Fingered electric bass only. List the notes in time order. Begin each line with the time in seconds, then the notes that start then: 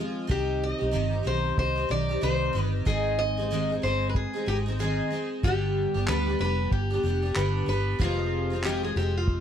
0.30 C2
0.82 B1
0.94 G1
1.26 B1
1.58 C2
1.90 B1
2.23 C2
2.55 G1
2.87 G#1
3.83 G1
4.47 G#1
5.44 G1
5.95 G1
6.08 D2
6.40 F1
6.72 G1
7.03 F1
7.36 G1
7.67 G1
8.00 F1
8.96 F1